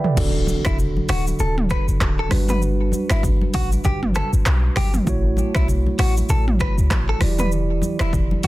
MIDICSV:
0, 0, Header, 1, 6, 480
1, 0, Start_track
1, 0, Key_signature, 2, "major"
1, 0, Tempo, 612245
1, 135, Time_signature, 4, 2, 24, 8
1, 6641, End_track
2, 0, Start_track
2, 0, Title_t, "Clean electric guitar"
2, 0, Program_c, 0, 27
2, 519, Note_on_c, 0, 64, 71
2, 603, Note_off_c, 0, 64, 0
2, 860, Note_on_c, 0, 66, 79
2, 976, Note_off_c, 0, 66, 0
2, 1099, Note_on_c, 0, 69, 80
2, 1216, Note_off_c, 0, 69, 0
2, 1339, Note_on_c, 0, 71, 74
2, 1455, Note_off_c, 0, 71, 0
2, 1719, Note_on_c, 0, 69, 77
2, 1802, Note_off_c, 0, 69, 0
2, 1959, Note_on_c, 0, 71, 63
2, 2043, Note_off_c, 0, 71, 0
2, 2442, Note_on_c, 0, 64, 78
2, 2524, Note_off_c, 0, 64, 0
2, 2781, Note_on_c, 0, 66, 82
2, 2897, Note_off_c, 0, 66, 0
2, 3021, Note_on_c, 0, 67, 84
2, 3136, Note_off_c, 0, 67, 0
2, 3259, Note_on_c, 0, 69, 81
2, 3376, Note_off_c, 0, 69, 0
2, 3739, Note_on_c, 0, 67, 88
2, 3856, Note_off_c, 0, 67, 0
2, 4358, Note_on_c, 0, 64, 71
2, 4442, Note_off_c, 0, 64, 0
2, 4700, Note_on_c, 0, 66, 80
2, 4816, Note_off_c, 0, 66, 0
2, 4940, Note_on_c, 0, 69, 86
2, 5056, Note_off_c, 0, 69, 0
2, 5180, Note_on_c, 0, 71, 79
2, 5296, Note_off_c, 0, 71, 0
2, 5560, Note_on_c, 0, 69, 83
2, 5643, Note_off_c, 0, 69, 0
2, 5799, Note_on_c, 0, 71, 65
2, 5883, Note_off_c, 0, 71, 0
2, 6280, Note_on_c, 0, 64, 77
2, 6363, Note_off_c, 0, 64, 0
2, 6641, End_track
3, 0, Start_track
3, 0, Title_t, "Tine electric piano"
3, 0, Program_c, 1, 4
3, 0, Control_c, 1, 64, 127
3, 0, Note_on_c, 1, 71, 58
3, 0, Note_on_c, 1, 74, 59
3, 0, Note_on_c, 1, 76, 70
3, 0, Note_on_c, 1, 78, 56
3, 0, Note_on_c, 1, 79, 70
3, 0, Note_on_c, 1, 83, 61
3, 32, Note_off_c, 1, 74, 0
3, 32, Note_on_c, 1, 74, 64
3, 36, Note_on_c, 1, 69, 53
3, 115, Note_on_c, 1, 50, 78
3, 128, Note_on_c, 1, 62, 74
3, 141, Note_on_c, 1, 66, 73
3, 145, Note_off_c, 1, 69, 0
3, 146, Control_c, 1, 64, 0
3, 147, Note_off_c, 1, 71, 0
3, 147, Note_off_c, 1, 79, 0
3, 147, Note_off_c, 1, 83, 0
3, 149, Note_off_c, 1, 78, 0
3, 152, Note_off_c, 1, 76, 0
3, 154, Note_on_c, 1, 69, 85
3, 261, Note_off_c, 1, 74, 0
3, 300, Control_c, 1, 64, 127
3, 1773, Note_off_c, 1, 50, 0
3, 1780, Note_off_c, 1, 62, 0
3, 1787, Note_off_c, 1, 66, 0
3, 1793, Note_off_c, 1, 69, 0
3, 1794, Note_on_c, 1, 55, 65
3, 1806, Note_on_c, 1, 62, 66
3, 1820, Note_on_c, 1, 66, 61
3, 1824, Control_c, 1, 64, 0
3, 1833, Note_on_c, 1, 71, 78
3, 1965, Control_c, 1, 64, 127
3, 3693, Note_off_c, 1, 55, 0
3, 3699, Note_off_c, 1, 62, 0
3, 3706, Note_off_c, 1, 66, 0
3, 3712, Note_off_c, 1, 71, 0
3, 3954, Note_on_c, 1, 57, 77
3, 3967, Note_on_c, 1, 64, 73
3, 3980, Note_on_c, 1, 66, 73
3, 3984, Control_c, 1, 64, 0
3, 3993, Note_on_c, 1, 73, 85
3, 4131, Control_c, 1, 64, 127
3, 5613, Note_off_c, 1, 57, 0
3, 5620, Note_off_c, 1, 64, 0
3, 5626, Note_off_c, 1, 66, 0
3, 5633, Note_off_c, 1, 73, 0
3, 5634, Note_on_c, 1, 52, 69
3, 5647, Note_on_c, 1, 64, 64
3, 5661, Note_on_c, 1, 66, 50
3, 5665, Control_c, 1, 64, 0
3, 5673, Note_on_c, 1, 74, 76
3, 5711, Note_on_c, 1, 67, 60
3, 5717, Note_off_c, 1, 66, 0
3, 5820, Control_c, 1, 64, 127
3, 6641, Note_off_c, 1, 52, 0
3, 6641, Note_off_c, 1, 64, 0
3, 6641, Note_off_c, 1, 67, 0
3, 6641, Note_off_c, 1, 74, 0
3, 6641, End_track
4, 0, Start_track
4, 0, Title_t, "808-style bass"
4, 0, Program_c, 2, 38
4, 135, Note_on_c, 2, 26, 110
4, 427, Note_off_c, 2, 26, 0
4, 516, Note_on_c, 2, 28, 96
4, 778, Note_off_c, 2, 28, 0
4, 854, Note_on_c, 2, 26, 89
4, 1039, Note_off_c, 2, 26, 0
4, 1093, Note_on_c, 2, 26, 97
4, 1386, Note_off_c, 2, 26, 0
4, 1473, Note_on_c, 2, 30, 88
4, 1551, Note_off_c, 2, 30, 0
4, 1573, Note_on_c, 2, 26, 96
4, 1759, Note_off_c, 2, 26, 0
4, 1813, Note_on_c, 2, 31, 110
4, 2291, Note_off_c, 2, 31, 0
4, 2433, Note_on_c, 2, 31, 96
4, 2696, Note_off_c, 2, 31, 0
4, 2778, Note_on_c, 2, 33, 97
4, 2961, Note_off_c, 2, 33, 0
4, 3016, Note_on_c, 2, 31, 98
4, 3308, Note_off_c, 2, 31, 0
4, 3394, Note_on_c, 2, 31, 104
4, 3472, Note_off_c, 2, 31, 0
4, 3496, Note_on_c, 2, 35, 100
4, 3680, Note_off_c, 2, 35, 0
4, 3735, Note_on_c, 2, 31, 95
4, 3920, Note_off_c, 2, 31, 0
4, 3975, Note_on_c, 2, 33, 112
4, 4267, Note_off_c, 2, 33, 0
4, 4356, Note_on_c, 2, 35, 96
4, 4618, Note_off_c, 2, 35, 0
4, 4694, Note_on_c, 2, 33, 92
4, 4880, Note_off_c, 2, 33, 0
4, 4934, Note_on_c, 2, 33, 99
4, 5227, Note_off_c, 2, 33, 0
4, 5314, Note_on_c, 2, 37, 93
4, 5392, Note_off_c, 2, 37, 0
4, 5415, Note_on_c, 2, 33, 97
4, 5600, Note_off_c, 2, 33, 0
4, 5656, Note_on_c, 2, 28, 102
4, 6133, Note_off_c, 2, 28, 0
4, 6274, Note_on_c, 2, 28, 96
4, 6536, Note_off_c, 2, 28, 0
4, 6617, Note_on_c, 2, 30, 96
4, 6641, Note_off_c, 2, 30, 0
4, 6641, End_track
5, 0, Start_track
5, 0, Title_t, "Impact"
5, 0, Program_c, 3, 103
5, 135, Note_on_c, 3, 60, 79
5, 2055, Note_off_c, 3, 60, 0
5, 6641, End_track
6, 0, Start_track
6, 0, Title_t, "Drums"
6, 34, Note_on_c, 9, 43, 84
6, 112, Note_off_c, 9, 43, 0
6, 134, Note_on_c, 9, 82, 72
6, 135, Note_on_c, 9, 36, 117
6, 135, Note_on_c, 9, 49, 100
6, 213, Note_off_c, 9, 36, 0
6, 213, Note_off_c, 9, 49, 0
6, 213, Note_off_c, 9, 82, 0
6, 369, Note_on_c, 9, 63, 82
6, 378, Note_on_c, 9, 82, 61
6, 447, Note_off_c, 9, 63, 0
6, 457, Note_off_c, 9, 82, 0
6, 507, Note_on_c, 9, 26, 97
6, 508, Note_on_c, 9, 37, 110
6, 516, Note_on_c, 9, 36, 94
6, 516, Note_on_c, 9, 82, 82
6, 585, Note_off_c, 9, 26, 0
6, 587, Note_off_c, 9, 37, 0
6, 594, Note_off_c, 9, 36, 0
6, 594, Note_off_c, 9, 82, 0
6, 615, Note_on_c, 9, 64, 83
6, 621, Note_on_c, 9, 82, 75
6, 693, Note_off_c, 9, 64, 0
6, 700, Note_off_c, 9, 82, 0
6, 758, Note_on_c, 9, 63, 79
6, 837, Note_off_c, 9, 63, 0
6, 852, Note_on_c, 9, 46, 80
6, 852, Note_on_c, 9, 82, 58
6, 856, Note_on_c, 9, 26, 68
6, 858, Note_on_c, 9, 37, 84
6, 861, Note_on_c, 9, 64, 79
6, 931, Note_off_c, 9, 46, 0
6, 931, Note_off_c, 9, 82, 0
6, 935, Note_off_c, 9, 26, 0
6, 936, Note_off_c, 9, 37, 0
6, 939, Note_off_c, 9, 64, 0
6, 998, Note_on_c, 9, 82, 70
6, 1001, Note_on_c, 9, 63, 54
6, 1076, Note_off_c, 9, 82, 0
6, 1079, Note_off_c, 9, 63, 0
6, 1090, Note_on_c, 9, 82, 79
6, 1098, Note_on_c, 9, 64, 86
6, 1169, Note_off_c, 9, 82, 0
6, 1176, Note_off_c, 9, 64, 0
6, 1237, Note_on_c, 9, 45, 100
6, 1315, Note_off_c, 9, 45, 0
6, 1333, Note_on_c, 9, 82, 53
6, 1335, Note_on_c, 9, 63, 81
6, 1337, Note_on_c, 9, 36, 91
6, 1338, Note_on_c, 9, 26, 76
6, 1339, Note_on_c, 9, 37, 92
6, 1411, Note_off_c, 9, 82, 0
6, 1414, Note_off_c, 9, 63, 0
6, 1416, Note_off_c, 9, 26, 0
6, 1416, Note_off_c, 9, 36, 0
6, 1418, Note_off_c, 9, 37, 0
6, 1476, Note_on_c, 9, 82, 82
6, 1555, Note_off_c, 9, 82, 0
6, 1574, Note_on_c, 9, 36, 99
6, 1575, Note_on_c, 9, 26, 74
6, 1575, Note_on_c, 9, 82, 66
6, 1576, Note_on_c, 9, 37, 95
6, 1576, Note_on_c, 9, 39, 97
6, 1652, Note_off_c, 9, 36, 0
6, 1653, Note_off_c, 9, 26, 0
6, 1654, Note_off_c, 9, 82, 0
6, 1655, Note_off_c, 9, 37, 0
6, 1655, Note_off_c, 9, 39, 0
6, 1810, Note_on_c, 9, 26, 71
6, 1811, Note_on_c, 9, 37, 90
6, 1816, Note_on_c, 9, 63, 68
6, 1816, Note_on_c, 9, 64, 73
6, 1817, Note_on_c, 9, 46, 74
6, 1817, Note_on_c, 9, 82, 55
6, 1888, Note_off_c, 9, 26, 0
6, 1890, Note_off_c, 9, 37, 0
6, 1895, Note_off_c, 9, 63, 0
6, 1895, Note_off_c, 9, 64, 0
6, 1896, Note_off_c, 9, 46, 0
6, 1896, Note_off_c, 9, 82, 0
6, 1951, Note_on_c, 9, 45, 89
6, 1951, Note_on_c, 9, 82, 80
6, 1955, Note_on_c, 9, 63, 75
6, 2029, Note_off_c, 9, 45, 0
6, 2030, Note_off_c, 9, 82, 0
6, 2033, Note_off_c, 9, 63, 0
6, 2055, Note_on_c, 9, 82, 71
6, 2133, Note_off_c, 9, 82, 0
6, 2288, Note_on_c, 9, 63, 83
6, 2298, Note_on_c, 9, 82, 64
6, 2366, Note_off_c, 9, 63, 0
6, 2377, Note_off_c, 9, 82, 0
6, 2427, Note_on_c, 9, 26, 90
6, 2428, Note_on_c, 9, 37, 111
6, 2436, Note_on_c, 9, 82, 82
6, 2505, Note_off_c, 9, 26, 0
6, 2506, Note_off_c, 9, 37, 0
6, 2514, Note_off_c, 9, 82, 0
6, 2534, Note_on_c, 9, 36, 94
6, 2534, Note_on_c, 9, 64, 82
6, 2541, Note_on_c, 9, 82, 78
6, 2612, Note_off_c, 9, 36, 0
6, 2612, Note_off_c, 9, 64, 0
6, 2620, Note_off_c, 9, 82, 0
6, 2677, Note_on_c, 9, 63, 77
6, 2756, Note_off_c, 9, 63, 0
6, 2773, Note_on_c, 9, 46, 82
6, 2773, Note_on_c, 9, 82, 57
6, 2777, Note_on_c, 9, 36, 99
6, 2780, Note_on_c, 9, 64, 82
6, 2851, Note_off_c, 9, 46, 0
6, 2851, Note_off_c, 9, 82, 0
6, 2856, Note_off_c, 9, 36, 0
6, 2858, Note_off_c, 9, 64, 0
6, 2918, Note_on_c, 9, 82, 74
6, 2919, Note_on_c, 9, 63, 55
6, 2996, Note_off_c, 9, 82, 0
6, 2997, Note_off_c, 9, 63, 0
6, 3011, Note_on_c, 9, 82, 82
6, 3016, Note_on_c, 9, 36, 89
6, 3017, Note_on_c, 9, 64, 84
6, 3090, Note_off_c, 9, 82, 0
6, 3094, Note_off_c, 9, 36, 0
6, 3096, Note_off_c, 9, 64, 0
6, 3157, Note_on_c, 9, 45, 103
6, 3235, Note_off_c, 9, 45, 0
6, 3254, Note_on_c, 9, 82, 56
6, 3255, Note_on_c, 9, 63, 81
6, 3259, Note_on_c, 9, 26, 77
6, 3260, Note_on_c, 9, 37, 93
6, 3332, Note_off_c, 9, 82, 0
6, 3333, Note_off_c, 9, 63, 0
6, 3337, Note_off_c, 9, 26, 0
6, 3338, Note_off_c, 9, 37, 0
6, 3397, Note_on_c, 9, 82, 78
6, 3475, Note_off_c, 9, 82, 0
6, 3495, Note_on_c, 9, 26, 81
6, 3495, Note_on_c, 9, 82, 65
6, 3496, Note_on_c, 9, 37, 94
6, 3496, Note_on_c, 9, 39, 96
6, 3574, Note_off_c, 9, 26, 0
6, 3574, Note_off_c, 9, 82, 0
6, 3575, Note_off_c, 9, 37, 0
6, 3575, Note_off_c, 9, 39, 0
6, 3731, Note_on_c, 9, 26, 72
6, 3732, Note_on_c, 9, 37, 89
6, 3736, Note_on_c, 9, 63, 69
6, 3736, Note_on_c, 9, 64, 72
6, 3738, Note_on_c, 9, 46, 78
6, 3738, Note_on_c, 9, 82, 57
6, 3809, Note_off_c, 9, 26, 0
6, 3810, Note_off_c, 9, 37, 0
6, 3814, Note_off_c, 9, 63, 0
6, 3814, Note_off_c, 9, 64, 0
6, 3817, Note_off_c, 9, 46, 0
6, 3817, Note_off_c, 9, 82, 0
6, 3872, Note_on_c, 9, 45, 91
6, 3872, Note_on_c, 9, 82, 83
6, 3875, Note_on_c, 9, 63, 79
6, 3950, Note_off_c, 9, 45, 0
6, 3950, Note_off_c, 9, 82, 0
6, 3953, Note_off_c, 9, 63, 0
6, 3975, Note_on_c, 9, 36, 113
6, 3976, Note_on_c, 9, 82, 72
6, 4054, Note_off_c, 9, 36, 0
6, 4054, Note_off_c, 9, 82, 0
6, 4208, Note_on_c, 9, 63, 86
6, 4219, Note_on_c, 9, 82, 62
6, 4287, Note_off_c, 9, 63, 0
6, 4298, Note_off_c, 9, 82, 0
6, 4348, Note_on_c, 9, 26, 95
6, 4349, Note_on_c, 9, 37, 116
6, 4356, Note_on_c, 9, 36, 96
6, 4357, Note_on_c, 9, 82, 82
6, 4426, Note_off_c, 9, 26, 0
6, 4428, Note_off_c, 9, 37, 0
6, 4435, Note_off_c, 9, 36, 0
6, 4435, Note_off_c, 9, 82, 0
6, 4455, Note_on_c, 9, 64, 85
6, 4462, Note_on_c, 9, 82, 77
6, 4533, Note_off_c, 9, 64, 0
6, 4541, Note_off_c, 9, 82, 0
6, 4598, Note_on_c, 9, 63, 80
6, 4676, Note_off_c, 9, 63, 0
6, 4694, Note_on_c, 9, 46, 82
6, 4694, Note_on_c, 9, 82, 59
6, 4698, Note_on_c, 9, 26, 71
6, 4699, Note_on_c, 9, 37, 83
6, 4701, Note_on_c, 9, 64, 79
6, 4772, Note_off_c, 9, 46, 0
6, 4772, Note_off_c, 9, 82, 0
6, 4776, Note_off_c, 9, 26, 0
6, 4777, Note_off_c, 9, 37, 0
6, 4779, Note_off_c, 9, 64, 0
6, 4839, Note_on_c, 9, 82, 70
6, 4841, Note_on_c, 9, 63, 56
6, 4918, Note_off_c, 9, 82, 0
6, 4919, Note_off_c, 9, 63, 0
6, 4932, Note_on_c, 9, 82, 83
6, 4939, Note_on_c, 9, 64, 87
6, 5010, Note_off_c, 9, 82, 0
6, 5018, Note_off_c, 9, 64, 0
6, 5078, Note_on_c, 9, 45, 100
6, 5157, Note_off_c, 9, 45, 0
6, 5175, Note_on_c, 9, 82, 58
6, 5177, Note_on_c, 9, 63, 85
6, 5178, Note_on_c, 9, 36, 92
6, 5180, Note_on_c, 9, 26, 78
6, 5181, Note_on_c, 9, 37, 97
6, 5253, Note_off_c, 9, 82, 0
6, 5255, Note_off_c, 9, 63, 0
6, 5256, Note_off_c, 9, 36, 0
6, 5258, Note_off_c, 9, 26, 0
6, 5259, Note_off_c, 9, 37, 0
6, 5317, Note_on_c, 9, 82, 83
6, 5396, Note_off_c, 9, 82, 0
6, 5414, Note_on_c, 9, 36, 99
6, 5416, Note_on_c, 9, 26, 74
6, 5416, Note_on_c, 9, 82, 64
6, 5417, Note_on_c, 9, 37, 94
6, 5417, Note_on_c, 9, 39, 97
6, 5493, Note_off_c, 9, 36, 0
6, 5494, Note_off_c, 9, 26, 0
6, 5494, Note_off_c, 9, 82, 0
6, 5495, Note_off_c, 9, 37, 0
6, 5495, Note_off_c, 9, 39, 0
6, 5650, Note_on_c, 9, 26, 73
6, 5651, Note_on_c, 9, 37, 88
6, 5656, Note_on_c, 9, 63, 70
6, 5656, Note_on_c, 9, 64, 72
6, 5657, Note_on_c, 9, 46, 79
6, 5657, Note_on_c, 9, 82, 55
6, 5728, Note_off_c, 9, 26, 0
6, 5729, Note_off_c, 9, 37, 0
6, 5734, Note_off_c, 9, 63, 0
6, 5734, Note_off_c, 9, 64, 0
6, 5736, Note_off_c, 9, 46, 0
6, 5736, Note_off_c, 9, 82, 0
6, 5791, Note_on_c, 9, 45, 90
6, 5792, Note_on_c, 9, 82, 85
6, 5795, Note_on_c, 9, 63, 80
6, 5870, Note_off_c, 9, 45, 0
6, 5870, Note_off_c, 9, 82, 0
6, 5873, Note_off_c, 9, 63, 0
6, 5894, Note_on_c, 9, 82, 71
6, 5973, Note_off_c, 9, 82, 0
6, 6129, Note_on_c, 9, 63, 85
6, 6138, Note_on_c, 9, 82, 64
6, 6207, Note_off_c, 9, 63, 0
6, 6217, Note_off_c, 9, 82, 0
6, 6267, Note_on_c, 9, 26, 94
6, 6268, Note_on_c, 9, 37, 117
6, 6275, Note_on_c, 9, 82, 80
6, 6345, Note_off_c, 9, 26, 0
6, 6346, Note_off_c, 9, 37, 0
6, 6354, Note_off_c, 9, 82, 0
6, 6373, Note_on_c, 9, 36, 94
6, 6375, Note_on_c, 9, 64, 81
6, 6380, Note_on_c, 9, 82, 75
6, 6452, Note_off_c, 9, 36, 0
6, 6453, Note_off_c, 9, 64, 0
6, 6459, Note_off_c, 9, 82, 0
6, 6517, Note_on_c, 9, 63, 78
6, 6595, Note_off_c, 9, 63, 0
6, 6612, Note_on_c, 9, 46, 81
6, 6612, Note_on_c, 9, 82, 60
6, 6617, Note_on_c, 9, 36, 101
6, 6641, Note_off_c, 9, 36, 0
6, 6641, Note_off_c, 9, 46, 0
6, 6641, Note_off_c, 9, 82, 0
6, 6641, End_track
0, 0, End_of_file